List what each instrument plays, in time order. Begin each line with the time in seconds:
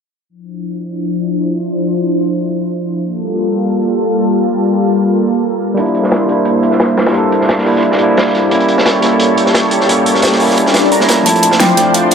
0.29 analog synth pad F3 D4 E4 C5
3.03 analog synth pad G3 A#3 F4 A4
5.74 tine electric piano G3 A#3 D4, analog synth pad E4 C5, closed hi-hat
5.80 tine electric piano E4
5.86 closed hi-hat
5.95 closed hi-hat
6.03 snare
6.11 snare, closed hi-hat
6.26 tine electric piano G3 A#3, closed hi-hat
6.30 tine electric piano D4 E4
6.45 closed hi-hat
6.63 closed hi-hat
6.71 snare
6.80 snare, closed hi-hat
6.97 snare, closed hi-hat
7.06 snare, closed hi-hat
7.12 tine electric piano G3 A#3, closed hi-hat
7.16 tine electric piano D4 A4
7.32 closed hi-hat
7.41 snare
7.49 snare, closed hi-hat
7.58 snare
7.64 tine electric piano G3 A#3 D4 E4, open hi-hat
7.76 snare
7.83 closed hi-hat
7.92 snare
7.97 tine electric piano G3 A#3, closed hi-hat
8.01 tine electric piano D4 E4
8.17 snare, closed hi-hat
8.27 snare
8.35 snare, closed hi-hat
8.49 tine electric piano G3 A#3 C#4, analog synth pad G4 A4 C#5, closed hi-hat
8.55 tine electric piano E4
8.60 closed hi-hat
8.69 closed hi-hat
8.78 snare
8.86 snare, closed hi-hat
9.00 tine electric piano G3 A#3 C#4, snare, closed hi-hat
9.06 tine electric piano E4
9.20 closed hi-hat
9.38 closed hi-hat
9.46 snare
9.54 snare, closed hi-hat
9.71 closed hi-hat
9.80 snare
9.86 tine electric piano G3 A#3 C#4, closed hi-hat
9.92 tine electric piano A4
10.06 closed hi-hat
10.15 snare
10.22 snare, closed hi-hat
10.32 snare
10.39 tine electric piano G3 A#3 C#4 E4, open hi-hat
10.50 snare
10.57 closed hi-hat, swell
10.66 snare
10.74 snare, closed hi-hat
10.84 snare
10.92 soft synth lead A#5, closed hi-hat
10.99 tine electric piano G3 A#3 C#4 E4, snare
11.09 snare, closed hi-hat
11.23 tine electric piano F3 A3, analog synth pad F3 D4 C5 D5, soft synth lead A5, closed hi-hat, riser
11.27 tine electric piano C4 E4
11.36 closed hi-hat
11.43 closed hi-hat
11.51 snare
11.60 soft synth lead G5, snare, closed hi-hat
11.74 tine electric piano F3 A3 C4, snare, closed hi-hat
11.80 tine electric piano D4
11.94 soft synth lead F5, closed hi-hat
12.11 closed hi-hat